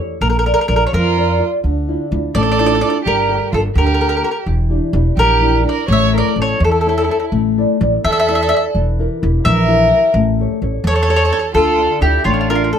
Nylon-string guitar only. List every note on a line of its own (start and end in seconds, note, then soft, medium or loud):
0.00 0.17 G4 soft
0.00 0.17 A4 soft
0.00 0.17 C#5 soft
0.22 0.68 A#3 medium
0.45 0.67 F4 soft
0.45 0.67 A#4 soft
0.45 0.68 D5 medium
0.69 1.07 F4 medium
0.69 1.07 A#4 soft
0.69 1.08 D5 medium
0.92 1.39 F3 medium
1.17 1.38 F4 medium
1.17 1.39 A#4 soft
1.17 1.39 D5 medium
1.39 1.59 F4 soft
1.39 1.59 A#4 soft
1.39 1.59 D5 soft
1.63 2.10 D3 medium
1.88 2.10 D4 soft
1.88 2.10 E4 soft
1.88 2.10 F4 medium
2.11 2.50 D4 soft
2.11 2.50 E4 soft
2.11 2.50 F4 medium
2.34 2.81 A3 medium
2.59 2.81 D4 medium
2.59 2.81 E4 medium
2.59 2.82 F4 medium
2.82 3.01 D4 medium
2.82 3.01 E4 soft
2.82 3.01 F4 medium
3.05 3.51 G3 medium
3.29 3.51 G4 soft
3.29 3.52 A4 soft
3.29 3.52 A#4 medium
3.52 3.90 G4 medium
3.52 3.91 A4 soft
3.52 3.91 A#4 medium
3.77 4.23 D3 medium
4.01 4.21 G4 medium
4.01 4.22 A4 medium
4.01 4.22 A#4 medium
4.22 4.41 G4 soft
4.22 4.41 A4 soft
4.22 4.42 A#4 soft
4.46 4.92 E3 medium
4.70 4.92 D4 soft
4.70 4.93 E4 soft
4.70 4.93 G4 medium
4.93 5.32 D4 medium
4.93 5.33 E4 medium
4.93 5.33 G4 medium
5.17 5.64 E3 medium
5.41 5.63 D4 medium
5.41 5.63 E4 medium
5.41 5.64 G4 medium
5.64 5.83 D4 soft
5.64 5.84 E4 soft
5.64 5.84 G4 medium
5.89 6.36 A3 medium
6.14 6.36 E4 soft
6.14 6.37 A4 medium
6.14 6.37 C#5 medium
6.37 6.77 E4 soft
6.37 6.77 A4 soft
6.37 6.77 C#5 soft
6.61 7.08 E3 medium
6.86 7.07 E4 medium
6.86 7.08 A4 medium
6.86 7.08 C#5 medium
7.09 7.28 E4 soft
7.09 7.28 A4 soft
7.09 7.28 C#5 soft
7.32 7.79 A3 medium
7.57 7.79 E4 medium
7.57 7.80 A4 soft
7.57 7.80 D5 soft
7.80 8.19 E4 soft
7.80 8.19 A4 medium
7.80 8.19 D5 soft
8.04 8.50 E3 medium
8.29 8.49 E4 medium
8.29 8.50 A4 medium
8.29 8.50 D5 medium
8.51 8.70 E4 soft
8.51 8.70 A4 soft
8.51 8.70 D5 soft
8.76 9.21 E3 medium
8.99 9.21 E4 medium
8.99 9.22 G4 soft
8.99 9.21 A#4 medium
9.22 9.60 E4 medium
9.22 9.60 G4 medium
9.22 9.60 A#4 medium
9.44 9.90 E3 medium
9.68 9.90 E4 medium
9.68 9.90 G4 medium
9.68 9.90 A#4 medium
9.91 10.10 E4 medium
9.91 10.10 G4 soft
9.91 10.10 A#4 medium
10.15 10.61 A3 medium
10.40 10.60 G4 soft
10.40 10.61 A4 medium
10.40 10.61 C#5 medium
10.62 10.99 G4 soft
10.62 11.00 A4 medium
10.62 11.00 C#5 medium
10.84 11.30 E3 medium
11.09 11.30 G4 medium
11.09 11.30 A4 medium
11.09 11.31 C#5 medium
11.31 11.50 G4 soft
11.31 11.50 A4 soft
11.31 11.51 C#5 medium
11.54 12.01 D3 medium
11.78 12.00 D4 soft
11.78 12.00 F4 soft
11.78 12.01 A4 medium
12.01 12.40 D4 soft
12.01 12.40 F4 soft
12.01 12.41 A4 medium
12.26 12.73 A3 medium
12.49 12.73 D4 medium
12.49 12.73 F4 medium
12.49 12.73 A4 medium
12.74 12.79 D4 soft
12.74 12.79 F4 soft
12.74 12.79 A4 soft